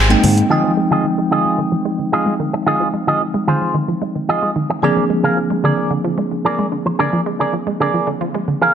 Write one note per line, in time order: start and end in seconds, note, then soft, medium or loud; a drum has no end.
0.00 0.14 G#1 loud
0.00 0.10 G4 medium
0.00 0.10 G#4 medium
0.00 0.11 C5 medium
0.10 0.47 G#3 medium
0.10 0.47 A#3 medium
0.10 0.48 C4 medium
0.10 0.48 D#4 medium
0.10 0.48 G5 loud
0.10 closed hi-hat soft
0.24 0.41 G#2 loud
0.24 muted clean electric guitar stroke soft
0.24 open hi-hat loud
0.24 low conga medium
0.38 closed hi-hat medium
0.49 0.59 D#3 loud
0.49 4.79 F3 medium
0.49 4.80 G#3 medium
0.49 4.80 C4 medium
0.49 4.80 D#4 medium
0.49 0.71 F4 medium
0.49 0.71 G#4 medium
0.49 0.71 D#5 loud
0.49 4.80 G5 medium
0.64 0.70 F3 medium
0.77 0.81 G#3 medium
0.91 0.95 D#3 medium
0.91 1.05 F4 medium
0.91 1.05 G#4 medium
0.91 1.05 D#5 medium
1.04 1.10 F3 medium
1.18 1.24 G#3 medium
1.18 muted clean electric guitar stroke soft
1.31 1.40 D#3 loud
1.31 1.59 F4 medium
1.31 1.59 G#4 medium
1.31 1.59 D#5 medium
1.45 1.51 F3 medium
1.58 1.67 D#3 medium
1.72 1.78 F3 medium
1.85 1.89 G#3 medium
1.85 muted clean electric guitar stroke soft
1.99 2.03 D#3 medium
2.12 2.19 F3 medium
2.12 2.33 F4 medium
2.12 2.33 G#4 medium
2.12 2.33 D#5 medium
2.26 2.32 G#3 loud
2.40 2.49 D#3 loud
2.53 2.59 F3 medium
2.53 muted clean electric guitar stroke loud
2.66 2.76 D#3 medium
2.66 2.87 F4 loud
2.66 2.87 G#4 medium
2.66 2.87 D#5 loud
2.80 2.86 F3 medium
2.94 2.97 G#3 loud
3.07 3.11 D#3 medium
3.07 3.21 F4 medium
3.07 3.21 G#4 medium
3.07 3.21 D#5 medium
3.21 3.27 F3 medium
3.34 3.40 G#3 medium
3.34 muted clean electric guitar stroke soft
3.48 3.57 D#3 medium
3.48 3.75 F4 medium
3.48 3.75 G#4 medium
3.48 3.75 C5 medium
3.61 3.67 F3 medium
3.74 3.84 D#3 medium
3.88 3.94 F3 loud
4.02 4.05 G#3 medium
4.02 muted clean electric guitar stroke soft
4.15 4.19 D#3 medium
4.29 4.35 F3 medium
4.29 4.49 F4 medium
4.29 4.50 G#4 medium
4.29 4.50 D#5 medium
4.43 4.48 G#3 loud
4.56 4.65 D#3 loud
4.70 4.75 F3 medium
4.70 muted clean electric guitar stroke loud
4.82 4.92 D3 loud
4.82 8.74 F3 medium
4.82 8.74 A#3 medium
4.82 8.74 C4 medium
4.82 8.74 D4 medium
4.82 5.04 G#4 loud
4.82 8.74 G#4 medium
4.82 5.04 A#4 medium
4.82 5.04 D5 loud
4.96 5.02 F3 medium
5.10 5.14 G#3 medium
5.23 5.27 D3 medium
5.23 5.37 G#4 medium
5.23 5.37 A#4 medium
5.23 5.37 F5 medium
5.37 5.43 F3 medium
5.50 5.56 G#3 medium
5.50 muted clean electric guitar stroke soft
5.64 5.73 D3 loud
5.64 5.91 G#4 medium
5.64 5.91 A#4 medium
5.64 5.91 D5 medium
5.77 5.83 F3 medium
5.91 6.00 D3 medium
6.04 6.10 F3 medium
6.18 6.22 G#3 medium
6.18 muted clean electric guitar stroke soft
6.31 6.35 D3 medium
6.45 6.51 F3 medium
6.45 6.66 G#4 medium
6.45 6.66 A#4 medium
6.45 6.66 D5 medium
6.59 6.65 G#3 medium
6.72 6.81 D3 medium
6.86 6.92 F3 medium
6.86 muted clean electric guitar stroke loud
6.99 7.08 D3 loud
6.99 7.20 G#4 loud
6.99 7.20 A#4 medium
6.99 7.20 D5 loud
7.13 7.19 F3 medium
7.26 7.30 G#3 medium
7.40 7.44 D3 medium
7.40 7.54 G#4 medium
7.40 7.54 A#4 medium
7.40 7.54 D5 medium
7.53 7.59 F3 medium
7.67 7.73 G#3 medium
7.67 muted clean electric guitar stroke soft
7.80 7.89 D3 medium
7.80 8.08 G#4 medium
7.80 8.08 A#4 medium
7.80 8.08 D5 medium
7.94 8.00 F3 medium
8.07 8.16 D3 medium
8.21 8.27 F3 loud
8.35 8.38 G#3 medium
8.35 muted clean electric guitar stroke soft
8.48 8.52 D3 medium
8.62 8.67 F3 medium
8.62 8.74 G#4 medium
8.62 8.74 A#4 medium
8.62 8.74 F5 medium